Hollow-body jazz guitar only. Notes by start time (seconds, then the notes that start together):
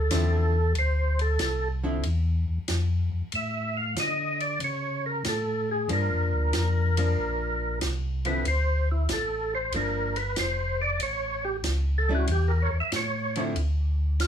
0.11 D3 F3 C4 E4
1.83 D3 F3 C4 E4
5.89 F3 A#3 D4
6.98 F3 A#3 D4
8.25 D3 F3 C4 E4
9.74 F3 A#3 D4
12.09 G3 C#4 E4
13.37 D3 F3 C4 E4